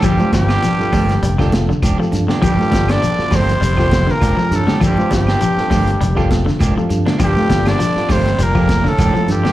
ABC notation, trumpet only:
X:1
M:4/4
L:1/16
Q:"Swing 16ths" 1/4=100
K:Gm
V:1 name="Trumpet"
G2 G8 z6 | G3 d3 c4- c B3 A2 | G2 G8 z6 | G3 d3 c2 B3 A3 G2 |]